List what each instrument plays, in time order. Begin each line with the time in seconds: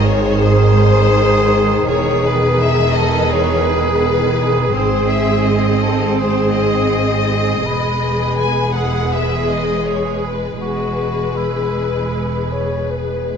Already playing: double bass section G#1, cello section G#2, viola section D#3 G#4, cor anglais D#4, violin section C5
0.05 violin section C#5
0.42 cor anglais G#4, violin section C5
1.85 double bass section E1, cello section E2, viola section G#4, cor anglais G#4, violin section B4 C#5
2.25 violin section B4
2.60 violin section E5
2.93 cor anglais A4, violin section D#5
3.30 cor anglais G#4, violin section C#5
3.66 violin section B4
4.39 cor anglais G#4
4.73 double bass section G#1, cello section G#2, viola section C4, cor anglais G#4, violin section C5
5.08 violin section E5
5.45 violin section D#5
5.82 cor anglais A4
6.17 cor anglais G#4, violin section C5
6.54 violin section D#5
7.30 cor anglais G#4
7.64 double bass section E1, cello section E2, viola section G#3 G#4, violin section B4, cor anglais B4
8.38 violin section G#5
8.75 cor anglais G#4, violin section F#5
9.12 cor anglais G#4, violin section E5
9.50 violin section D#5
9.86 violin section C#5
10.21 violin section B4
10.60 double bass section E1, cello section E2, viola section G#3 G#4, cor anglais F#4, violin section B4
11.37 cor anglais E4, clarinet B4
12.52 clarinet C#5
12.91 clarinet B4